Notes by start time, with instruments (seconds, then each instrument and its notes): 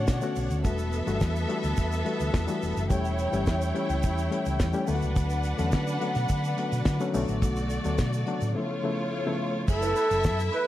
Already playing: reed electric piano D3 A3 B3 C#4 F#4, string section D4 C#5 F#5
0.07 fingered electric bass B2, kick, snare, closed hi-hat, shaker
0.21 reed electric piano D3 A3 B3 C#4 F#4, shaker
0.36 fingered electric bass B1, open hi-hat, shaker
0.51 fingered electric bass D2, closed hi-hat, shaker
0.64 reed electric piano E3 G3 A3 D4 F#4, string section B3 A4 E5, kick, closed hi-hat, shaker
0.78 shaker
0.92 closed hi-hat, shaker
1.06 fingered electric bass G1, reed electric piano E3 G3 A3 D4 F#4, closed hi-hat, shaker
1.21 fingered electric bass E2, kick, snare, closed hi-hat, shaker
1.36 shaker
1.48 reed electric piano E3 G3 A3 D4 F#4, closed hi-hat
1.63 fingered electric bass D2, closed hi-hat, shaker
1.77 fingered electric bass E2, kick, closed hi-hat, shaker
1.92 closed hi-hat, shaker
2.05 reed electric piano E3 G3 A3 D4 F#4, closed hi-hat
2.20 fingered electric bass D2, closed hi-hat, shaker
2.34 fingered electric bass E2, kick, snare, closed hi-hat, shaker
2.47 reed electric piano E3 G3 A3 D4 F#4, shaker
2.62 fingered electric bass E1, open hi-hat, shaker
2.77 fingered electric bass F#1, closed hi-hat, shaker
2.90 fingered electric bass E1, reed electric piano E3 G3 A3 C#4 G4, string section E4 C#5 G5, kick, closed hi-hat, shaker
3.05 shaker
3.18 closed hi-hat, shaker
3.32 fingered electric bass G1, reed electric piano E3 G3 A3 C#4 G4, closed hi-hat, shaker
3.47 fingered electric bass E2, kick, snare, closed hi-hat, shaker
3.61 closed hi-hat, shaker
3.74 reed electric piano E3 G3 A3 C#4 G4, closed hi-hat
3.89 fingered electric bass C#2, closed hi-hat, shaker
4.03 fingered electric bass E2, kick, closed hi-hat, shaker
4.18 shaker
4.30 reed electric piano E3 G3 A3 C#4 G4, closed hi-hat
4.46 fingered electric bass C#2, closed hi-hat, shaker
4.60 fingered electric bass E2, kick, snare, closed hi-hat, shaker
4.73 reed electric piano E3 G3 A3 C#4 G4, shaker
4.87 fingered electric bass D2, reed electric piano D3 F#3 A3 B3 E4, string section D4 B4 F#5, open hi-hat, shaker
4.95 reed electric piano F#4
5.02 fingered electric bass C#2, closed hi-hat, shaker
5.16 fingered electric bass D2, kick, closed hi-hat, shaker
5.30 shaker
5.43 closed hi-hat, shaker
5.58 fingered electric bass E2, reed electric piano D3 F#3 A3 B3 C#4, closed hi-hat, shaker
5.72 fingered electric bass D3, kick, snare, closed hi-hat, shaker
5.87 shaker
6.00 reed electric piano D3 F#3 A3 B3 D4, closed hi-hat
6.15 fingered electric bass B2, snare, closed hi-hat, shaker
6.29 fingered electric bass D3, kick, closed hi-hat, shaker
6.43 closed hi-hat, shaker
6.57 reed electric piano D3 F#3 A3 B3 F#4, closed hi-hat
6.72 fingered electric bass B2, closed hi-hat, shaker
6.85 fingered electric bass D3, kick, snare, closed hi-hat, shaker
7.00 reed electric piano D3 F#3 A3 B3 C#4, closed hi-hat, shaker
7.13 fingered electric bass B1, reed electric piano D3 F#3 A3 B3 C#4, string section A3 F#4 D5, open hi-hat, shaker
7.22 reed electric piano D4
7.28 fingered electric bass A1, closed hi-hat, shaker
7.42 fingered electric bass B1, kick, closed hi-hat, shaker
7.56 shaker
7.70 closed hi-hat, shaker
7.84 fingered electric bass D2, reed electric piano D3 F#3 A3 B3 D4, closed hi-hat, shaker
7.98 fingered electric bass B2, kick, snare, closed hi-hat, shaker
8.12 closed hi-hat, shaker
8.27 reed electric piano C#3 F#3 A3 B3 D4, closed hi-hat
8.40 fingered electric bass A2, closed hi-hat, shaker
8.55 reed electric piano C#3 F3 A3 B3 E4, string section A3 F4 C#5
8.84 reed electric piano C#3 F3 A3 B3 E4
9.26 reed electric piano C#3 F3 A3 B3 E4
9.68 fingered electric bass F#1, french horn section E3 A3 B3 A4, string section E4 E5, flugelhorn A4, muted clean electric guitar stroke, kick, crash, shaker
9.82 clean electric guitar E4 A4 B4, closed hi-hat, shaker
9.96 clean electric guitar E4 A4 B4, closed hi-hat, shaker
10.10 fingered electric bass F#1, closed hi-hat, shaker
10.24 fingered electric bass F#2, muted clean electric guitar stroke, kick, snare, shaker
10.38 muted clean electric guitar stroke, closed hi-hat, shaker
10.52 clean electric guitar E4 A4 B4, flugelhorn B4, closed hi-hat